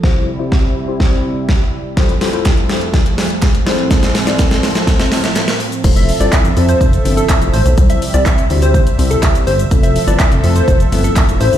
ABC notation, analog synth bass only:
X:1
M:4/4
L:1/16
Q:1/4=124
K:Flyd
V:1 name="Analog synth bass" clef=bass
z16 | z16 | z16 | F,,,3 G,,, z F,,, F,,2 F,,,2 G,,,2 z F,,, A,,, B,,, |
C,,2 z C,,2 z D,,3 z C,,2 z2 G,,,2 | F,,,3 G,,, z F,,, F,,2 F,,,2 G,,,2 z F,,, A,,, G,,, |]